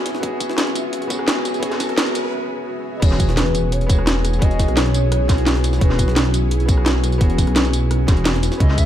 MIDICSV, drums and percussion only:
0, 0, Header, 1, 2, 480
1, 0, Start_track
1, 0, Key_signature, 4, "major"
1, 0, Tempo, 348837
1, 321, Time_signature, 4, 2, 24, 8
1, 12184, End_track
2, 0, Start_track
2, 0, Title_t, "Drums"
2, 78, Note_on_c, 9, 38, 42
2, 78, Note_on_c, 9, 42, 65
2, 201, Note_off_c, 9, 38, 0
2, 201, Note_on_c, 9, 38, 45
2, 216, Note_off_c, 9, 42, 0
2, 317, Note_on_c, 9, 36, 123
2, 318, Note_on_c, 9, 42, 76
2, 319, Note_off_c, 9, 42, 0
2, 319, Note_on_c, 9, 42, 86
2, 338, Note_off_c, 9, 38, 0
2, 454, Note_off_c, 9, 36, 0
2, 456, Note_off_c, 9, 42, 0
2, 557, Note_on_c, 9, 36, 61
2, 557, Note_on_c, 9, 42, 91
2, 557, Note_on_c, 9, 54, 54
2, 560, Note_off_c, 9, 42, 0
2, 560, Note_on_c, 9, 42, 67
2, 681, Note_on_c, 9, 38, 48
2, 694, Note_off_c, 9, 36, 0
2, 694, Note_off_c, 9, 54, 0
2, 697, Note_off_c, 9, 42, 0
2, 795, Note_off_c, 9, 38, 0
2, 795, Note_on_c, 9, 38, 117
2, 795, Note_on_c, 9, 42, 75
2, 798, Note_off_c, 9, 38, 0
2, 798, Note_off_c, 9, 42, 0
2, 798, Note_on_c, 9, 38, 114
2, 798, Note_on_c, 9, 42, 90
2, 921, Note_off_c, 9, 42, 0
2, 921, Note_on_c, 9, 42, 45
2, 936, Note_off_c, 9, 38, 0
2, 1038, Note_off_c, 9, 42, 0
2, 1038, Note_on_c, 9, 42, 91
2, 1038, Note_on_c, 9, 54, 54
2, 1039, Note_off_c, 9, 42, 0
2, 1039, Note_on_c, 9, 42, 68
2, 1176, Note_off_c, 9, 54, 0
2, 1177, Note_off_c, 9, 42, 0
2, 1277, Note_on_c, 9, 42, 78
2, 1279, Note_off_c, 9, 42, 0
2, 1279, Note_on_c, 9, 42, 88
2, 1402, Note_off_c, 9, 42, 0
2, 1402, Note_on_c, 9, 42, 46
2, 1517, Note_off_c, 9, 42, 0
2, 1517, Note_on_c, 9, 36, 109
2, 1517, Note_on_c, 9, 42, 89
2, 1517, Note_on_c, 9, 54, 56
2, 1518, Note_off_c, 9, 42, 0
2, 1518, Note_on_c, 9, 42, 70
2, 1638, Note_on_c, 9, 37, 50
2, 1655, Note_off_c, 9, 36, 0
2, 1655, Note_off_c, 9, 54, 0
2, 1656, Note_off_c, 9, 42, 0
2, 1757, Note_on_c, 9, 38, 115
2, 1757, Note_on_c, 9, 42, 85
2, 1758, Note_off_c, 9, 38, 0
2, 1758, Note_off_c, 9, 42, 0
2, 1758, Note_on_c, 9, 38, 117
2, 1758, Note_on_c, 9, 42, 76
2, 1776, Note_off_c, 9, 37, 0
2, 1895, Note_off_c, 9, 38, 0
2, 1895, Note_off_c, 9, 42, 0
2, 1997, Note_on_c, 9, 37, 31
2, 1997, Note_on_c, 9, 42, 85
2, 1997, Note_on_c, 9, 54, 55
2, 1998, Note_off_c, 9, 42, 0
2, 1998, Note_on_c, 9, 42, 67
2, 2120, Note_off_c, 9, 54, 0
2, 2120, Note_on_c, 9, 54, 27
2, 2122, Note_off_c, 9, 42, 0
2, 2122, Note_on_c, 9, 42, 45
2, 2135, Note_off_c, 9, 37, 0
2, 2238, Note_off_c, 9, 42, 0
2, 2238, Note_on_c, 9, 36, 123
2, 2238, Note_on_c, 9, 42, 75
2, 2240, Note_off_c, 9, 42, 0
2, 2240, Note_on_c, 9, 42, 87
2, 2258, Note_off_c, 9, 54, 0
2, 2359, Note_on_c, 9, 38, 37
2, 2362, Note_off_c, 9, 42, 0
2, 2362, Note_on_c, 9, 42, 43
2, 2375, Note_off_c, 9, 36, 0
2, 2477, Note_off_c, 9, 42, 0
2, 2477, Note_on_c, 9, 42, 91
2, 2477, Note_on_c, 9, 54, 59
2, 2478, Note_on_c, 9, 36, 61
2, 2482, Note_off_c, 9, 38, 0
2, 2482, Note_off_c, 9, 42, 0
2, 2482, Note_on_c, 9, 38, 46
2, 2482, Note_on_c, 9, 42, 70
2, 2601, Note_on_c, 9, 37, 33
2, 2602, Note_off_c, 9, 42, 0
2, 2602, Note_on_c, 9, 42, 44
2, 2615, Note_off_c, 9, 36, 0
2, 2615, Note_off_c, 9, 54, 0
2, 2619, Note_off_c, 9, 38, 0
2, 2719, Note_off_c, 9, 42, 0
2, 2719, Note_on_c, 9, 38, 120
2, 2719, Note_on_c, 9, 42, 74
2, 2739, Note_off_c, 9, 37, 0
2, 2841, Note_off_c, 9, 42, 0
2, 2841, Note_on_c, 9, 42, 45
2, 2842, Note_on_c, 9, 54, 27
2, 2857, Note_off_c, 9, 38, 0
2, 2958, Note_off_c, 9, 42, 0
2, 2958, Note_on_c, 9, 42, 68
2, 2961, Note_off_c, 9, 42, 0
2, 2961, Note_off_c, 9, 54, 0
2, 2961, Note_on_c, 9, 42, 89
2, 2961, Note_on_c, 9, 54, 56
2, 3099, Note_off_c, 9, 42, 0
2, 3099, Note_off_c, 9, 54, 0
2, 4159, Note_on_c, 9, 36, 122
2, 4161, Note_on_c, 9, 42, 89
2, 4161, Note_on_c, 9, 49, 99
2, 4282, Note_on_c, 9, 38, 37
2, 4297, Note_off_c, 9, 36, 0
2, 4298, Note_off_c, 9, 49, 0
2, 4299, Note_off_c, 9, 42, 0
2, 4399, Note_on_c, 9, 36, 59
2, 4400, Note_on_c, 9, 42, 68
2, 4400, Note_on_c, 9, 54, 60
2, 4420, Note_off_c, 9, 38, 0
2, 4524, Note_on_c, 9, 38, 49
2, 4537, Note_off_c, 9, 36, 0
2, 4538, Note_off_c, 9, 42, 0
2, 4538, Note_off_c, 9, 54, 0
2, 4640, Note_off_c, 9, 38, 0
2, 4640, Note_on_c, 9, 38, 115
2, 4640, Note_on_c, 9, 42, 84
2, 4641, Note_off_c, 9, 38, 0
2, 4641, Note_off_c, 9, 42, 0
2, 4641, Note_on_c, 9, 38, 118
2, 4641, Note_on_c, 9, 42, 90
2, 4765, Note_off_c, 9, 42, 0
2, 4765, Note_on_c, 9, 42, 45
2, 4778, Note_off_c, 9, 38, 0
2, 4880, Note_off_c, 9, 42, 0
2, 4880, Note_on_c, 9, 42, 97
2, 4880, Note_on_c, 9, 54, 59
2, 4883, Note_off_c, 9, 42, 0
2, 4883, Note_on_c, 9, 42, 70
2, 5018, Note_off_c, 9, 54, 0
2, 5021, Note_off_c, 9, 42, 0
2, 5121, Note_on_c, 9, 42, 89
2, 5245, Note_off_c, 9, 42, 0
2, 5245, Note_on_c, 9, 42, 45
2, 5359, Note_on_c, 9, 36, 104
2, 5361, Note_off_c, 9, 42, 0
2, 5361, Note_on_c, 9, 42, 100
2, 5361, Note_on_c, 9, 54, 60
2, 5365, Note_off_c, 9, 42, 0
2, 5365, Note_on_c, 9, 42, 66
2, 5485, Note_on_c, 9, 37, 49
2, 5497, Note_off_c, 9, 36, 0
2, 5498, Note_off_c, 9, 54, 0
2, 5503, Note_off_c, 9, 42, 0
2, 5602, Note_on_c, 9, 38, 120
2, 5602, Note_on_c, 9, 42, 81
2, 5604, Note_off_c, 9, 38, 0
2, 5604, Note_off_c, 9, 42, 0
2, 5604, Note_on_c, 9, 38, 119
2, 5604, Note_on_c, 9, 42, 89
2, 5622, Note_off_c, 9, 37, 0
2, 5741, Note_off_c, 9, 38, 0
2, 5741, Note_off_c, 9, 42, 0
2, 5842, Note_on_c, 9, 37, 33
2, 5842, Note_on_c, 9, 42, 92
2, 5842, Note_on_c, 9, 54, 57
2, 5843, Note_off_c, 9, 42, 0
2, 5843, Note_on_c, 9, 42, 71
2, 5963, Note_off_c, 9, 54, 0
2, 5963, Note_on_c, 9, 54, 28
2, 5965, Note_off_c, 9, 42, 0
2, 5965, Note_on_c, 9, 42, 44
2, 5979, Note_off_c, 9, 37, 0
2, 6079, Note_on_c, 9, 36, 125
2, 6082, Note_off_c, 9, 42, 0
2, 6082, Note_on_c, 9, 42, 80
2, 6084, Note_off_c, 9, 42, 0
2, 6084, Note_on_c, 9, 42, 85
2, 6100, Note_off_c, 9, 54, 0
2, 6206, Note_off_c, 9, 42, 0
2, 6206, Note_on_c, 9, 42, 44
2, 6217, Note_off_c, 9, 36, 0
2, 6320, Note_on_c, 9, 36, 61
2, 6323, Note_off_c, 9, 42, 0
2, 6323, Note_on_c, 9, 42, 95
2, 6323, Note_on_c, 9, 54, 58
2, 6324, Note_off_c, 9, 42, 0
2, 6324, Note_on_c, 9, 38, 46
2, 6324, Note_on_c, 9, 42, 69
2, 6445, Note_off_c, 9, 42, 0
2, 6445, Note_on_c, 9, 37, 34
2, 6445, Note_on_c, 9, 42, 43
2, 6457, Note_off_c, 9, 36, 0
2, 6460, Note_off_c, 9, 54, 0
2, 6461, Note_off_c, 9, 38, 0
2, 6562, Note_off_c, 9, 42, 0
2, 6562, Note_on_c, 9, 38, 119
2, 6562, Note_on_c, 9, 42, 80
2, 6565, Note_off_c, 9, 38, 0
2, 6565, Note_off_c, 9, 42, 0
2, 6565, Note_on_c, 9, 38, 117
2, 6565, Note_on_c, 9, 42, 91
2, 6583, Note_off_c, 9, 37, 0
2, 6687, Note_off_c, 9, 42, 0
2, 6687, Note_on_c, 9, 42, 45
2, 6702, Note_off_c, 9, 38, 0
2, 6803, Note_off_c, 9, 42, 0
2, 6803, Note_on_c, 9, 42, 67
2, 6804, Note_off_c, 9, 42, 0
2, 6804, Note_on_c, 9, 42, 98
2, 6804, Note_on_c, 9, 54, 60
2, 6942, Note_off_c, 9, 42, 0
2, 6942, Note_off_c, 9, 54, 0
2, 7042, Note_on_c, 9, 37, 58
2, 7042, Note_on_c, 9, 42, 83
2, 7044, Note_off_c, 9, 42, 0
2, 7044, Note_on_c, 9, 42, 86
2, 7180, Note_off_c, 9, 37, 0
2, 7182, Note_off_c, 9, 42, 0
2, 7279, Note_on_c, 9, 36, 108
2, 7282, Note_on_c, 9, 42, 70
2, 7283, Note_off_c, 9, 42, 0
2, 7283, Note_on_c, 9, 38, 40
2, 7283, Note_on_c, 9, 42, 93
2, 7283, Note_on_c, 9, 54, 56
2, 7405, Note_off_c, 9, 42, 0
2, 7405, Note_on_c, 9, 42, 45
2, 7417, Note_off_c, 9, 36, 0
2, 7420, Note_off_c, 9, 38, 0
2, 7420, Note_off_c, 9, 54, 0
2, 7521, Note_off_c, 9, 42, 0
2, 7521, Note_on_c, 9, 38, 118
2, 7521, Note_on_c, 9, 42, 80
2, 7522, Note_off_c, 9, 38, 0
2, 7522, Note_off_c, 9, 42, 0
2, 7522, Note_on_c, 9, 38, 120
2, 7522, Note_on_c, 9, 42, 86
2, 7645, Note_off_c, 9, 38, 0
2, 7645, Note_on_c, 9, 38, 50
2, 7660, Note_off_c, 9, 42, 0
2, 7762, Note_on_c, 9, 42, 93
2, 7762, Note_on_c, 9, 54, 53
2, 7763, Note_off_c, 9, 38, 0
2, 7763, Note_off_c, 9, 42, 0
2, 7763, Note_on_c, 9, 38, 43
2, 7763, Note_on_c, 9, 42, 70
2, 7883, Note_off_c, 9, 54, 0
2, 7883, Note_on_c, 9, 54, 27
2, 7885, Note_off_c, 9, 38, 0
2, 7885, Note_on_c, 9, 38, 46
2, 7900, Note_off_c, 9, 42, 0
2, 7999, Note_on_c, 9, 36, 126
2, 8001, Note_on_c, 9, 42, 74
2, 8004, Note_off_c, 9, 42, 0
2, 8004, Note_on_c, 9, 42, 88
2, 8021, Note_off_c, 9, 54, 0
2, 8023, Note_off_c, 9, 38, 0
2, 8123, Note_on_c, 9, 38, 39
2, 8137, Note_off_c, 9, 36, 0
2, 8142, Note_off_c, 9, 42, 0
2, 8239, Note_on_c, 9, 36, 64
2, 8242, Note_on_c, 9, 42, 69
2, 8243, Note_off_c, 9, 42, 0
2, 8243, Note_on_c, 9, 42, 94
2, 8243, Note_on_c, 9, 54, 59
2, 8260, Note_off_c, 9, 38, 0
2, 8365, Note_on_c, 9, 38, 49
2, 8377, Note_off_c, 9, 36, 0
2, 8381, Note_off_c, 9, 42, 0
2, 8381, Note_off_c, 9, 54, 0
2, 8482, Note_off_c, 9, 38, 0
2, 8482, Note_on_c, 9, 38, 124
2, 8482, Note_on_c, 9, 42, 78
2, 8483, Note_off_c, 9, 38, 0
2, 8483, Note_off_c, 9, 42, 0
2, 8483, Note_on_c, 9, 38, 121
2, 8483, Note_on_c, 9, 42, 92
2, 8605, Note_off_c, 9, 42, 0
2, 8605, Note_on_c, 9, 42, 43
2, 8621, Note_off_c, 9, 38, 0
2, 8722, Note_off_c, 9, 42, 0
2, 8722, Note_on_c, 9, 42, 92
2, 8722, Note_on_c, 9, 54, 59
2, 8723, Note_off_c, 9, 42, 0
2, 8723, Note_on_c, 9, 42, 68
2, 8860, Note_off_c, 9, 54, 0
2, 8861, Note_off_c, 9, 42, 0
2, 8961, Note_on_c, 9, 42, 79
2, 9082, Note_off_c, 9, 42, 0
2, 9082, Note_on_c, 9, 42, 47
2, 9199, Note_on_c, 9, 36, 111
2, 9200, Note_off_c, 9, 42, 0
2, 9200, Note_on_c, 9, 42, 71
2, 9201, Note_off_c, 9, 42, 0
2, 9201, Note_on_c, 9, 42, 90
2, 9201, Note_on_c, 9, 54, 58
2, 9323, Note_on_c, 9, 37, 49
2, 9337, Note_off_c, 9, 36, 0
2, 9339, Note_off_c, 9, 42, 0
2, 9339, Note_off_c, 9, 54, 0
2, 9440, Note_on_c, 9, 38, 121
2, 9440, Note_on_c, 9, 42, 76
2, 9442, Note_off_c, 9, 38, 0
2, 9442, Note_off_c, 9, 42, 0
2, 9442, Note_on_c, 9, 38, 116
2, 9442, Note_on_c, 9, 42, 90
2, 9460, Note_off_c, 9, 37, 0
2, 9579, Note_off_c, 9, 38, 0
2, 9579, Note_off_c, 9, 42, 0
2, 9680, Note_on_c, 9, 42, 66
2, 9682, Note_off_c, 9, 42, 0
2, 9682, Note_on_c, 9, 37, 33
2, 9682, Note_on_c, 9, 42, 89
2, 9682, Note_on_c, 9, 54, 54
2, 9802, Note_off_c, 9, 42, 0
2, 9802, Note_on_c, 9, 42, 44
2, 9803, Note_off_c, 9, 54, 0
2, 9803, Note_on_c, 9, 54, 26
2, 9819, Note_off_c, 9, 37, 0
2, 9918, Note_off_c, 9, 42, 0
2, 9918, Note_on_c, 9, 42, 88
2, 9919, Note_on_c, 9, 36, 127
2, 9923, Note_off_c, 9, 42, 0
2, 9923, Note_on_c, 9, 42, 74
2, 9941, Note_off_c, 9, 54, 0
2, 10041, Note_off_c, 9, 42, 0
2, 10041, Note_on_c, 9, 42, 43
2, 10056, Note_off_c, 9, 36, 0
2, 10159, Note_on_c, 9, 36, 63
2, 10160, Note_off_c, 9, 42, 0
2, 10160, Note_on_c, 9, 38, 47
2, 10160, Note_on_c, 9, 42, 72
2, 10162, Note_off_c, 9, 42, 0
2, 10162, Note_on_c, 9, 42, 90
2, 10162, Note_on_c, 9, 54, 60
2, 10281, Note_off_c, 9, 42, 0
2, 10281, Note_on_c, 9, 42, 43
2, 10284, Note_on_c, 9, 37, 34
2, 10296, Note_off_c, 9, 36, 0
2, 10298, Note_off_c, 9, 38, 0
2, 10299, Note_off_c, 9, 54, 0
2, 10400, Note_off_c, 9, 42, 0
2, 10400, Note_on_c, 9, 38, 115
2, 10400, Note_on_c, 9, 42, 89
2, 10403, Note_off_c, 9, 38, 0
2, 10403, Note_off_c, 9, 42, 0
2, 10403, Note_on_c, 9, 38, 122
2, 10403, Note_on_c, 9, 42, 74
2, 10421, Note_off_c, 9, 37, 0
2, 10524, Note_off_c, 9, 42, 0
2, 10524, Note_on_c, 9, 42, 44
2, 10525, Note_on_c, 9, 54, 28
2, 10541, Note_off_c, 9, 38, 0
2, 10642, Note_off_c, 9, 42, 0
2, 10642, Note_on_c, 9, 42, 69
2, 10643, Note_off_c, 9, 42, 0
2, 10643, Note_off_c, 9, 54, 0
2, 10643, Note_on_c, 9, 42, 90
2, 10643, Note_on_c, 9, 54, 58
2, 10780, Note_off_c, 9, 42, 0
2, 10780, Note_off_c, 9, 54, 0
2, 10881, Note_on_c, 9, 42, 89
2, 10882, Note_off_c, 9, 42, 0
2, 10882, Note_on_c, 9, 37, 57
2, 10882, Note_on_c, 9, 42, 75
2, 11019, Note_off_c, 9, 37, 0
2, 11019, Note_off_c, 9, 42, 0
2, 11119, Note_on_c, 9, 36, 113
2, 11119, Note_on_c, 9, 42, 68
2, 11122, Note_off_c, 9, 42, 0
2, 11122, Note_on_c, 9, 38, 39
2, 11122, Note_on_c, 9, 42, 91
2, 11122, Note_on_c, 9, 54, 57
2, 11241, Note_off_c, 9, 42, 0
2, 11241, Note_on_c, 9, 42, 45
2, 11256, Note_off_c, 9, 36, 0
2, 11259, Note_off_c, 9, 38, 0
2, 11259, Note_off_c, 9, 54, 0
2, 11358, Note_off_c, 9, 42, 0
2, 11358, Note_on_c, 9, 38, 117
2, 11358, Note_on_c, 9, 42, 88
2, 11360, Note_off_c, 9, 38, 0
2, 11360, Note_off_c, 9, 42, 0
2, 11360, Note_on_c, 9, 38, 119
2, 11360, Note_on_c, 9, 42, 74
2, 11480, Note_off_c, 9, 38, 0
2, 11480, Note_on_c, 9, 38, 49
2, 11497, Note_off_c, 9, 42, 0
2, 11597, Note_off_c, 9, 38, 0
2, 11597, Note_on_c, 9, 38, 43
2, 11597, Note_on_c, 9, 42, 67
2, 11601, Note_off_c, 9, 42, 0
2, 11601, Note_on_c, 9, 42, 83
2, 11601, Note_on_c, 9, 54, 55
2, 11720, Note_off_c, 9, 38, 0
2, 11720, Note_on_c, 9, 38, 48
2, 11723, Note_off_c, 9, 54, 0
2, 11723, Note_on_c, 9, 54, 27
2, 11738, Note_off_c, 9, 42, 0
2, 11838, Note_on_c, 9, 36, 119
2, 11838, Note_on_c, 9, 42, 87
2, 11841, Note_off_c, 9, 42, 0
2, 11841, Note_on_c, 9, 42, 75
2, 11857, Note_off_c, 9, 38, 0
2, 11860, Note_off_c, 9, 54, 0
2, 11963, Note_on_c, 9, 38, 36
2, 11976, Note_off_c, 9, 36, 0
2, 11978, Note_off_c, 9, 42, 0
2, 12078, Note_on_c, 9, 36, 61
2, 12078, Note_on_c, 9, 42, 69
2, 12080, Note_off_c, 9, 42, 0
2, 12080, Note_on_c, 9, 42, 91
2, 12080, Note_on_c, 9, 54, 62
2, 12100, Note_off_c, 9, 38, 0
2, 12184, Note_off_c, 9, 36, 0
2, 12184, Note_off_c, 9, 42, 0
2, 12184, Note_off_c, 9, 54, 0
2, 12184, End_track
0, 0, End_of_file